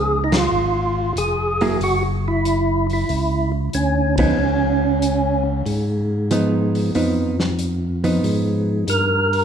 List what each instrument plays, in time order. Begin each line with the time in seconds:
Already playing: tonewheel organ C#2 G#4
0.24 tonewheel organ D#4
0.32 tonewheel organ F4, snare, ride
0.52 tonewheel organ G#1
1.16 tonewheel organ F1 G#4, closed hi-hat
1.61 hollow-body jazz guitar F#3 A#3 E4 G#4, open hi-hat
1.81 tonewheel organ F#1 F#4, open hi-hat
2.28 tonewheel organ E4
2.45 closed hi-hat
2.90 tonewheel organ E4, open hi-hat
3.09 tonewheel organ C#2, open hi-hat
3.73 tonewheel organ D2 C#4, closed hi-hat
4.18 hollow-body jazz guitar F3 B3 D#4, tonewheel organ C#4, kick, ride
4.39 tonewheel organ C#2
5.02 closed hi-hat
5.66 tonewheel organ G#2, open hi-hat
6.31 hollow-body jazz guitar F3 B3 D#4, closed hi-hat
6.75 open hi-hat
6.95 tonewheel organ F2, hollow-body jazz guitar F3 B3 D#4, open hi-hat
7.40 snare
7.59 closed hi-hat
8.04 hollow-body jazz guitar F3 B3 D#4, open hi-hat
8.24 tonewheel organ G#2, open hi-hat
8.87 tonewheel organ G2 A#4, closed hi-hat
9.33 open hi-hat